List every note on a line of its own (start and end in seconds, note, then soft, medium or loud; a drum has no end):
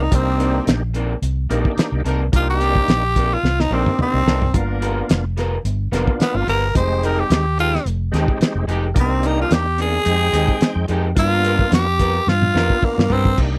0.03 0.16 D#4 medium
0.11 0.58 C2 medium
0.11 0.82 A#3 medium
0.11 0.67 C4 medium
0.11 0.67 C4 loud
0.11 0.83 D4 medium
0.11 0.83 D#4 medium
0.11 0.83 G4 medium
0.11 0.67 A#4 medium
0.11 kick loud
0.11 closed hi-hat medium
0.39 0.57 C3 medium
0.39 0.57 D#3 medium
0.39 0.57 A#3 medium
0.39 0.58 D4 medium
0.39 closed hi-hat medium
0.67 1.14 A#1 medium
0.67 snare loud
0.67 closed hi-hat medium
0.94 1.12 C3 medium
0.94 1.12 D#3 medium
0.94 1.13 A#3 medium
0.94 1.13 D4 medium
0.94 closed hi-hat medium
1.22 1.45 C2 medium
1.22 closed hi-hat medium
1.50 1.63 A#1 medium
1.50 1.67 C3 medium
1.50 1.68 D#3 medium
1.50 2.03 A#3 medium
1.50 1.68 A#3 medium
1.50 2.02 D4 medium
1.50 1.68 D4 medium
1.50 2.03 D#4 medium
1.50 2.03 G4 loud
1.50 closed hi-hat medium
1.65 kick medium
1.77 muted fingered electric bass stroke soft
1.77 snare loud
1.77 closed hi-hat medium
1.92 2.03 C2 medium
2.04 2.28 C2 medium
2.04 2.22 C3 medium
2.04 2.23 D#3 medium
2.04 2.23 A#3 medium
2.04 2.20 D4 medium
2.04 2.23 D4 medium
2.04 2.20 D#4 medium
2.04 2.21 A#4 medium
2.04 closed hi-hat medium
2.32 2.80 C2 medium
2.32 3.03 A#3 medium
2.32 2.88 C4 medium
2.32 3.04 D4 medium
2.32 3.04 D#4 medium
2.32 2.48 F4 medium
2.32 3.04 G4 medium
2.32 2.89 A#4 medium
2.32 kick loud
2.32 closed hi-hat medium
2.50 3.35 G4 loud
2.60 2.78 C3 medium
2.60 2.78 D#3 medium
2.60 2.78 A#3 medium
2.60 2.79 D4 medium
2.60 closed hi-hat medium
2.75 kick medium
2.88 3.35 A#1 medium
2.88 snare loud
2.88 closed hi-hat medium
3.16 3.33 C3 medium
3.16 3.34 D#3 medium
3.16 3.34 A#3 medium
3.16 3.34 D4 medium
3.16 kick medium
3.16 closed hi-hat medium
3.34 3.62 F4 medium
3.43 3.67 C2 medium
3.43 snare medium
3.60 3.75 D#4 loud
3.60 snare medium
3.70 3.83 A#1 medium
3.70 3.88 C3 medium
3.70 3.89 D#3 medium
3.70 4.23 A#3 medium
3.70 3.89 A#3 medium
3.70 3.99 C4 medium
3.70 4.24 D4 medium
3.70 3.89 D4 medium
3.70 4.24 D#4 medium
3.70 4.24 G4 medium
3.86 mid tom medium
3.99 4.54 C4 loud
3.99 muted fingered electric bass stroke soft
3.99 mid tom medium
4.14 4.24 C2 medium
4.26 4.49 C2 medium
4.26 4.44 C3 medium
4.26 4.44 D#3 medium
4.26 4.44 A#3 medium
4.26 4.41 D4 medium
4.26 4.45 D4 medium
4.26 4.41 D#4 medium
4.26 4.42 A#4 medium
4.26 snare loud
4.42 floor tom medium
4.53 5.01 G1 medium
4.53 5.24 A#3 medium
4.53 5.25 B3 medium
4.53 5.25 D4 medium
4.53 5.09 F4 medium
4.53 5.25 F4 medium
4.53 5.09 A#4 medium
4.53 kick loud
4.53 closed hi-hat medium
4.81 4.99 G3 medium
4.81 4.99 B3 medium
4.81 5.00 F4 medium
4.81 5.00 A#4 medium
4.81 closed hi-hat medium
5.09 5.56 F1 medium
5.09 snare loud
5.09 closed hi-hat medium
5.37 5.54 G3 medium
5.37 5.55 B3 medium
5.37 5.55 F4 loud
5.37 5.55 A#4 medium
5.37 snare soft
5.37 closed hi-hat medium
5.65 5.88 G1 loud
5.65 closed hi-hat medium
5.92 6.05 F1 medium
5.92 6.10 G3 medium
5.92 6.45 A#3 medium
5.92 6.45 B3 medium
5.92 6.10 B3 medium
5.92 6.45 D4 medium
5.92 6.10 F4 medium
5.92 6.46 F4 medium
5.92 6.11 A#4 loud
5.92 snare soft
5.92 closed hi-hat medium
6.07 kick medium
6.20 6.38 B3 loud
6.20 muted fingered electric bass stroke soft
6.20 snare loud
6.20 closed hi-hat medium
6.34 6.45 G1 medium
6.34 6.47 F4 medium
6.46 6.71 G1 medium
6.46 6.65 G3 medium
6.46 6.62 B3 medium
6.46 6.65 B3 medium
6.46 6.62 F4 medium
6.46 6.66 F4 medium
6.46 6.62 A#4 medium
6.46 6.75 A#4 loud
6.46 6.66 A#4 medium
6.46 closed hi-hat medium
6.74 7.22 F1 medium
6.74 7.30 G#3 medium
6.74 7.45 G#3 medium
6.74 7.46 C4 medium
6.74 7.30 D#4 medium
6.74 7.46 D#4 medium
6.74 7.31 G4 medium
6.74 7.46 G4 medium
6.74 7.06 C5 medium
6.74 kick loud
6.74 closed hi-hat medium
7.03 7.20 F3 medium
7.03 7.21 G#3 medium
7.03 7.21 D#4 medium
7.03 7.21 G4 medium
7.03 7.21 A#4 medium
7.03 closed hi-hat medium
7.20 7.58 G4 medium
7.30 7.77 D#2 medium
7.30 snare loud
7.30 closed hi-hat medium
7.58 7.75 F3 medium
7.58 7.76 G#3 medium
7.58 7.76 D#4 medium
7.58 7.86 F4 loud
7.58 7.76 G4 medium
7.58 closed hi-hat medium
7.75 snare soft
7.85 8.09 F1 medium
7.85 closed hi-hat medium
8.12 8.26 D#2 medium
8.12 8.30 F3 medium
8.12 8.65 G#3 medium
8.12 8.31 G#3 medium
8.12 8.65 C4 medium
8.12 8.65 D#4 medium
8.12 8.31 D#4 medium
8.12 8.66 G4 loud
8.12 8.31 G4 medium
8.12 snare soft
8.12 closed hi-hat medium
8.28 kick medium
8.40 muted fingered electric bass stroke soft
8.40 snare loud
8.40 closed hi-hat medium
8.55 8.66 F1 medium
8.67 8.91 F1 medium
8.67 8.85 F3 medium
8.67 8.83 G#3 medium
8.67 8.86 G#3 medium
8.67 8.83 D#4 medium
8.67 8.86 D#4 medium
8.67 8.86 G4 medium
8.67 8.84 G4 loud
8.67 closed hi-hat medium
8.94 9.43 C2 medium
8.94 9.66 A#3 medium
8.94 9.52 C4 medium
8.94 9.66 D4 medium
8.94 9.66 D#4 medium
8.94 9.67 G4 medium
8.94 9.52 A#4 medium
8.94 kick loud
8.94 closed hi-hat medium
9.00 9.28 C4 medium
9.23 9.41 C3 medium
9.23 9.41 D#3 medium
9.23 9.41 A#3 medium
9.23 9.42 D4 medium
9.23 9.39 D#4 medium
9.23 closed hi-hat medium
9.42 9.55 F4 medium
9.51 9.98 E2 loud
9.51 9.79 G4 medium
9.51 snare loud
9.51 closed hi-hat medium
9.78 9.96 C3 medium
9.78 9.96 D#3 medium
9.78 9.96 A#3 medium
9.78 9.97 D4 medium
9.78 10.87 G#4 loud
9.78 closed hi-hat medium
10.05 10.29 F2 loud
10.05 10.28 G#3 medium
10.05 10.73 G#3 medium
10.05 10.28 C4 medium
10.05 10.29 D#4 medium
10.05 10.74 D#4 medium
10.05 10.29 G4 medium
10.05 10.74 G5 medium
10.05 closed hi-hat medium
10.32 10.46 D#2 medium
10.32 10.51 F3 medium
10.32 10.86 G#3 medium
10.32 10.51 G#3 medium
10.32 10.86 C4 medium
10.32 10.86 D#4 medium
10.32 10.52 D#4 medium
10.32 10.52 G4 medium
10.32 10.86 G5 medium
10.32 closed hi-hat medium
10.48 kick medium
10.61 muted fingered electric bass stroke soft
10.61 snare loud
10.61 closed hi-hat medium
10.76 10.87 F2 loud
10.88 11.12 F2 medium
10.88 11.06 F3 medium
10.88 11.07 G#3 medium
10.88 11.04 G#3 medium
10.88 11.07 D#4 loud
10.88 11.05 D#4 medium
10.88 11.07 G4 loud
10.88 11.05 G4 medium
10.88 closed hi-hat medium
11.15 11.64 G2 medium
11.15 11.87 A#3 medium
11.15 11.87 B3 medium
11.15 11.87 D4 medium
11.15 11.87 F4 medium
11.15 11.72 F4 medium
11.15 11.72 F4 loud
11.15 11.73 A#4 medium
11.15 kick loud
11.15 closed hi-hat medium
11.44 11.62 G3 medium
11.44 11.62 B3 medium
11.44 11.62 F4 medium
11.44 11.63 A#4 medium
11.44 closed hi-hat medium
11.59 kick medium
11.72 12.18 F2 loud
11.72 12.31 G4 loud
11.72 snare loud
11.72 closed hi-hat medium
11.99 12.17 G3 medium
11.99 12.17 B3 medium
11.99 12.17 F4 medium
11.99 12.18 A#4 medium
11.99 kick medium
11.99 closed hi-hat medium
12.27 12.51 G2 loud
12.27 12.86 F4 loud
12.27 snare medium
12.42 high tom medium
12.54 12.67 F2 medium
12.54 12.72 G3 medium
12.54 13.07 A#3 medium
12.54 13.07 B3 medium
12.54 12.72 B3 medium
12.54 13.08 D4 medium
12.54 12.73 F4 medium
12.54 13.08 F4 medium
12.54 12.73 A#4 medium
12.54 snare medium
12.70 kick medium
12.83 13.14 A#3 medium
12.83 muted fingered electric bass stroke soft
12.83 kick medium
12.98 13.09 G2 loud
12.98 snare medium
13.08 13.34 G2 medium
13.08 13.28 G3 medium
13.08 13.24 B3 medium
13.08 13.28 B3 medium
13.08 13.24 F4 medium
13.08 13.28 F4 medium
13.08 13.25 A#4 medium
13.08 13.29 A#4 medium
13.08 floor tom loud
13.12 13.38 C4 loud
13.25 kick medium
13.37 13.58 C2 medium
13.37 13.58 A#3 medium
13.37 13.58 D4 medium
13.37 13.58 D#4 medium
13.37 13.58 G4 medium
13.37 kick loud
13.37 crash loud